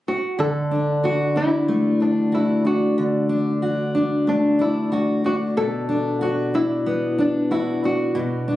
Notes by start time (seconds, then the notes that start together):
0.08 F#4
0.39 D3 A4
0.71 D4
1.04 F#4
1.36 D4 E4
1.68 A3
2.00 D4
2.32 E4 F#4
2.65 D4 F#4
2.98 D3
3.29 D4
3.62 F#4
3.95 D4
4.27 A3 D4
4.59 D4 E4
4.92 F#4
5.24 D4 F#4
5.57 B2 A4
5.89 D4
6.21 F#4
6.54 D4 E4
6.86 B3
7.18 D4
7.51 E4 F#4
7.84 D4 F#4
8.15 B2
8.48 D4